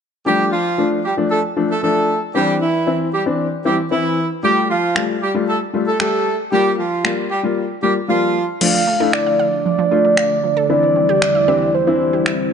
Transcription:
0.26 0.51 F3 medium
0.26 0.47 G3 medium
0.26 0.52 A3 medium
0.26 0.52 D4 medium
0.26 0.46 G4 medium
0.52 0.90 F3 medium
0.52 0.89 F4 medium
0.78 0.97 F3 medium
0.78 0.97 A3 medium
0.78 0.98 D4 medium
1.04 1.15 G3 medium
1.04 1.15 G4 medium
1.17 1.36 F3 medium
1.17 1.37 A3 medium
1.17 1.37 D4 medium
1.31 1.41 A3 medium
1.31 1.41 A4 medium
1.56 1.69 F3 medium
1.56 1.69 A3 medium
1.56 1.69 D4 medium
1.70 1.80 A3 medium
1.70 1.80 A4 medium
1.83 2.08 F3 medium
1.83 2.08 A3 medium
1.83 2.20 A3 medium
1.83 2.08 D4 medium
1.83 2.20 A4 medium
2.35 2.60 E3 medium
2.35 2.56 G3 medium
2.35 2.60 C4 medium
2.35 2.60 D4 medium
2.35 2.55 G4 medium
2.61 2.98 E3 medium
2.61 2.98 E4 medium
2.87 3.06 E3 medium
2.87 3.06 C4 medium
2.87 3.06 E4 medium
3.13 3.24 G3 medium
3.13 3.23 G4 medium
3.26 3.45 E3 medium
3.26 3.45 C4 medium
3.26 3.45 D4 medium
3.65 3.78 E3 medium
3.65 3.76 G3 medium
3.65 3.78 C4 medium
3.65 3.78 E4 medium
3.65 3.75 G4 medium
3.91 4.17 E3 medium
3.91 4.29 E3 medium
3.91 4.17 C4 medium
3.91 4.28 E4 medium
3.91 4.17 E4 medium
4.43 4.69 G3 medium
4.43 4.64 G3 medium
4.43 4.69 A3 medium
4.43 4.69 F4 medium
4.43 4.64 G4 medium
4.70 5.07 F3 medium
4.70 5.07 F4 medium
4.95 5.15 G3 medium
4.95 5.15 A3 medium
4.95 5.15 F4 medium
4.95 finger snap loud
5.22 5.32 G3 medium
5.22 5.32 G4 medium
5.35 5.54 G3 medium
5.35 5.54 A3 medium
5.35 5.54 F4 medium
5.48 5.59 A3 medium
5.48 5.58 A4 medium
5.74 5.87 G3 medium
5.74 5.87 A3 medium
5.74 5.87 F4 medium
5.87 5.98 A3 medium
5.87 5.97 A4 medium
6.00 6.25 G3 medium
6.00 6.26 A3 medium
6.00 6.37 A3 medium
6.00 6.26 G4 medium
6.00 6.37 A4 medium
6.00 finger snap loud
6.52 6.78 G3 medium
6.52 6.73 G3 medium
6.52 6.78 A#3 medium
6.52 6.78 F4 medium
6.52 6.72 G4 medium
6.78 7.16 F3 medium
6.78 7.15 F4 medium
7.04 7.23 G3 medium
7.04 7.24 A#3 medium
7.04 7.24 F4 medium
7.04 finger snap loud
7.31 7.41 G3 medium
7.31 7.41 G4 medium
7.43 7.63 G3 medium
7.43 7.63 A#3 medium
7.43 7.63 F4 medium
7.83 7.95 G3 medium
7.83 7.93 G3 medium
7.83 7.96 A#3 medium
7.83 7.96 F4 medium
7.83 7.93 G4 medium
8.09 8.46 F3 medium
8.09 8.34 G3 medium
8.09 8.34 A#3 medium
8.09 8.34 F4 medium
8.09 8.46 F4 medium
8.61 12.53 D3 medium
8.61 8.71 F3 medium
8.61 10.68 F3 medium
8.61 8.80 A3 medium
8.61 10.68 A3 medium
8.61 8.80 D4 medium
8.61 10.68 D4 medium
8.61 8.80 F4 medium
8.61 9.15 F5 loud
8.61 crash medium
8.74 8.84 F3 medium
8.87 8.97 A3 medium
9.00 9.44 A3 medium
9.00 9.44 D4 medium
9.00 9.45 E4 medium
9.00 9.10 A4 medium
9.13 9.65 D5 loud
9.13 9.23 F5 medium
9.13 finger snap loud
9.26 9.36 F5 medium
9.39 9.49 F5 medium
9.65 9.75 F3 medium
9.65 10.66 D5 loud
9.79 9.88 F3 medium
9.91 10.29 A3 medium
9.91 10.29 D4 medium
9.91 10.30 F4 medium
10.05 10.14 A4 medium
10.17 10.27 F5 medium
10.17 finger snap loud
10.44 10.53 F3 medium
10.57 10.66 A4 loud
10.69 12.53 E2 medium
10.69 11.08 E3 medium
10.69 10.80 E3 medium
10.69 12.53 G3 medium
10.69 11.08 C4 medium
10.69 12.53 C4 medium
10.69 11.08 D4 medium
10.69 12.53 E4 medium
10.69 11.08 E4 medium
10.69 11.76 D5 loud
10.83 10.93 E3 medium
10.96 11.06 C4 medium
11.09 11.19 G4 medium
11.22 11.32 E5 medium
11.22 finger snap loud
11.35 11.45 E5 medium
11.48 11.67 E3 medium
11.48 11.67 C4 medium
11.48 11.67 D4 medium
11.48 11.67 G4 medium
11.48 11.58 E5 medium
11.74 11.84 E3 medium
11.74 12.52 C5 medium
11.87 12.31 E3 medium
11.87 11.97 E3 medium
11.87 12.31 C4 medium
11.87 12.32 D4 medium
11.87 12.32 E4 medium
12.13 12.23 G4 medium
12.26 12.36 E5 loud
12.26 finger snap loud

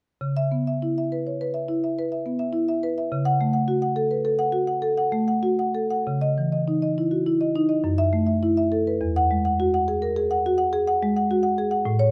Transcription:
0.21 3.06 C#3 soft
0.37 0.61 E5 soft
0.52 0.76 B3 soft
0.67 0.91 E5 soft
0.82 1.06 E4 soft
0.98 1.21 E5 soft
1.12 1.35 B4 soft
1.27 1.41 C#5 soft
1.41 1.64 B4 soft
1.54 1.77 E5 soft
1.68 1.92 E4 soft
1.84 2.06 E5 soft
1.99 2.21 B4 soft
2.12 2.34 E5 soft
2.26 2.48 B3 soft
2.39 2.62 E5 soft
2.53 2.76 E4 soft
2.69 2.91 E5 soft
2.83 3.06 B4 soft
2.98 3.12 E5 soft
3.12 6.03 C#3 soft
3.25 3.48 F#5 medium
3.41 3.63 A3 soft
3.53 3.77 F#5 soft
3.68 3.91 F#4 soft
3.82 4.05 F#5 soft
3.96 4.19 A4 soft
4.11 4.25 B4 soft
4.25 4.48 A4 soft
4.39 4.62 F#5 medium
4.52 4.77 F#4 soft
4.67 4.92 F#5 soft
4.82 5.07 A4 soft
4.97 5.22 F#5 soft
5.12 5.38 A3 soft
5.28 5.53 F#5 soft
5.43 5.69 F#4 soft
5.59 5.85 F#5 soft
5.75 6.00 A4 soft
5.90 6.06 F#5 soft
6.07 7.80 C#3 soft
6.21 6.46 D#5 medium
6.38 6.62 E3 soft
6.52 6.76 D#5 soft
6.68 6.91 D#4 soft
6.82 7.05 D#5 soft
6.98 7.20 E4 soft
7.11 7.26 F#4 soft
7.26 7.49 E4 soft
7.41 7.64 D#5 soft
7.56 7.78 D#4 soft
7.69 7.84 D#5 soft
7.84 8.96 F#2 medium
7.98 8.22 E5 medium
8.13 8.36 A3 soft
8.27 8.50 E5 soft
8.43 8.66 E4 soft
8.57 8.80 E5 soft
8.72 8.94 A4 soft
8.87 9.01 B4 soft
9.01 11.82 E2 medium
9.16 9.38 F#5 medium
9.31 9.53 G#3 soft
9.45 9.67 F#5 soft
9.60 9.81 F#4 soft
9.74 9.96 F#5 soft
9.88 10.10 G#4 soft
10.02 10.16 A#4 soft
10.16 10.39 G#4 medium
10.31 10.53 F#5 medium
10.46 10.68 F#4 soft
10.58 10.81 F#5 soft
10.73 10.95 G#4 medium
10.87 11.10 F#5 medium
11.03 11.24 G#3 medium
11.17 11.38 F#5 soft
11.31 11.53 F#4 medium
11.43 11.65 F#5 soft
11.58 11.80 G#4 medium
11.71 11.85 F#5 soft
11.85 12.11 A2 medium
11.99 12.11 C#5 medium

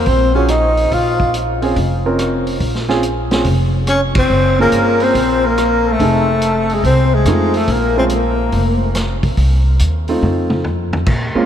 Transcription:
0.06 0.87 A#1 medium
0.06 0.34 C4 medium
0.06 0.34 C5 medium
0.06 kick soft
0.06 open hi-hat soft
0.35 0.51 C#4 medium
0.35 0.48 C#4 medium
0.35 0.48 F4 medium
0.35 0.48 F#4 medium
0.35 0.48 G#4 medium
0.35 0.51 C#5 medium
0.48 0.95 D#4 medium
0.48 0.94 D#5 medium
0.48 cross-stick medium
0.48 closed hi-hat medium
0.77 open hi-hat soft
0.92 1.72 A#1 medium
0.92 1.35 F4 medium
0.92 1.35 F5 medium
0.92 kick soft
0.92 open hi-hat soft
1.20 kick soft
1.34 closed hi-hat medium
1.62 1.75 C4 medium
1.62 1.75 C#4 medium
1.62 1.75 F4 medium
1.62 1.75 G#4 medium
1.62 open hi-hat soft
1.76 2.57 F1 medium
1.76 kick soft
1.76 open hi-hat soft
2.06 2.59 C4 medium
2.06 2.59 C#4 medium
2.06 2.59 F4 medium
2.06 2.59 A#4 medium
2.19 cross-stick medium
2.19 closed hi-hat medium
2.47 open hi-hat soft
2.60 3.41 A#1 medium
2.60 kick soft
2.60 open hi-hat soft
2.75 snare soft
2.89 3.02 C4 medium
2.89 3.02 C#4 medium
2.89 3.02 F4 medium
2.89 3.02 G#4 medium
2.89 snare soft
3.03 closed hi-hat medium
3.31 3.44 C4 medium
3.31 3.44 C#4 medium
3.31 3.45 F4 medium
3.31 3.44 G#4 medium
3.31 snare medium
3.31 open hi-hat soft
3.44 4.26 F1 medium
3.44 kick soft
3.44 open hi-hat soft
3.87 4.01 C#4 medium
3.87 4.01 C#5 medium
3.87 cross-stick medium
3.87 closed hi-hat medium
4.15 4.57 C4 medium
4.15 4.56 C5 medium
4.15 kick medium
4.15 ride medium
4.30 4.69 F#1 medium
4.59 5.12 A#3 medium
4.59 5.05 A#3 medium
4.59 5.13 C#4 medium
4.59 5.13 F4 medium
4.59 5.13 G#4 medium
4.59 5.04 A#4 medium
4.72 5.12 G1 medium
4.72 closed hi-hat medium
5.00 5.48 C4 medium
5.00 5.47 C5 medium
5.00 open hi-hat soft
5.14 5.95 A#1 medium
5.14 kick soft
5.14 open hi-hat soft
5.45 5.94 A#3 medium
5.45 5.89 A#4 medium
5.58 cross-stick medium
5.58 closed hi-hat soft
5.87 6.74 A4 medium
5.92 6.76 A3 medium
5.99 6.80 F1 medium
5.99 6.25 A3 medium
5.99 6.25 C4 soft
5.99 6.25 D#4 medium
5.99 6.25 G#4 medium
5.99 kick soft
5.99 open hi-hat soft
6.42 closed hi-hat medium
6.70 6.85 G#4 medium
6.70 open hi-hat soft
6.74 6.85 G#3 medium
6.84 7.23 C2 medium
6.84 7.16 C4 medium
6.84 7.16 C5 medium
6.84 kick soft
6.84 open hi-hat soft
7.14 7.59 G#3 medium
7.14 7.58 G#4 medium
7.25 7.65 F2 medium
7.25 7.52 A3 medium
7.25 7.52 C4 medium
7.25 7.52 D#4 medium
7.25 7.52 F4 medium
7.25 cross-stick medium
7.25 closed hi-hat medium
7.54 7.73 A3 medium
7.54 7.72 A4 medium
7.54 open hi-hat soft
7.68 8.49 A#1 medium
7.68 7.98 A#3 medium
7.68 7.97 A#4 medium
7.68 kick soft
7.68 open hi-hat soft
7.97 8.10 G#3 medium
7.97 8.10 C4 medium
7.97 8.05 C4 medium
7.97 8.10 C#4 medium
7.97 8.10 F4 medium
7.97 8.04 C5 medium
8.09 8.78 A#4 medium
8.09 closed hi-hat soft
8.14 8.79 A#3 medium
8.52 9.19 F1 medium
8.52 kick soft
8.52 open hi-hat soft
8.95 cross-stick medium
8.95 snare soft
8.95 closed hi-hat medium
9.23 9.37 B1 medium
9.23 kick medium
9.23 open hi-hat soft
9.37 9.77 C2 medium
9.37 kick soft
9.37 open hi-hat soft
9.79 10.20 D#2 medium
9.79 closed hi-hat medium
10.08 10.62 A3 medium
10.08 10.62 C4 medium
10.08 10.62 D#4 medium
10.08 10.62 F4 medium
10.08 open hi-hat soft
10.22 11.03 F2 medium
10.22 mid tom soft
10.50 mid tom medium
10.64 floor tom medium
10.93 floor tom medium
11.06 11.33 A#2 medium
11.06 kick medium
11.06 crash medium
11.35 11.46 G#3 medium
11.35 11.46 A#3 medium
11.35 11.46 C4 medium
11.35 11.46 C#4 medium
11.35 11.46 F4 medium
11.35 muted upright bass stroke soft

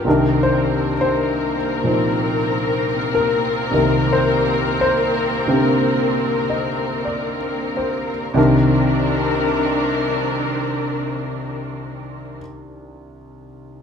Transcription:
0.04 3.70 C2 medium
0.04 3.71 C3 soft
0.04 3.72 D#3 medium
0.04 8.31 A#3 medium
0.04 8.31 C4 medium
0.04 3.73 D4 soft
0.04 8.31 A#4 medium
0.09 3.13 A#4 medium
0.43 0.94 C5 medium
1.01 1.56 C5 medium
1.84 3.72 A#2 soft
1.84 3.73 F3 soft
1.84 3.73 D#4 soft
1.84 3.74 C5 soft
3.15 3.74 A#4 medium
3.71 8.32 C2 soft
3.71 5.45 C3 soft
3.71 8.34 D#3 soft
3.71 8.37 A#3 soft
3.75 8.36 A#4 medium
4.13 4.74 C5 medium
4.81 5.23 C5 medium
5.47 8.33 C3 soft
5.47 8.36 D3 soft
5.47 8.36 C4 soft
5.47 8.37 G4 soft
6.50 7.36 D#5 soft
7.05 8.10 D5 soft
7.77 8.71 C5 soft
8.34 12.36 C2 medium
8.34 12.38 C3 medium
8.34 12.38 D#3 medium
8.34 12.36 D#3 medium
8.34 12.36 C4 medium
8.34 12.34 D4 medium
8.34 12.39 D4 medium
8.34 12.34 A#4 medium
8.34 12.40 A#4 medium

